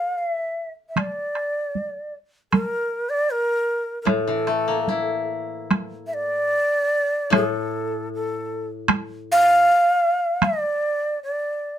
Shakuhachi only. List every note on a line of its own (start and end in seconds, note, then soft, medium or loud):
0.00 0.20 F5 medium
0.18 0.71 E5 medium
0.89 1.00 E5 soft
0.98 2.14 D5 medium
2.53 3.11 A#4 medium
3.09 3.32 D5 loud
3.31 4.01 A#4 medium
4.02 4.09 A#4 soft
4.07 5.29 A4 medium
6.07 6.15 E5 medium
6.14 7.34 D5 loud
7.35 8.09 A4 medium
8.15 8.68 A4 medium
9.32 10.46 F5 loud
10.44 11.23 D5 medium
11.23 11.79 D5 medium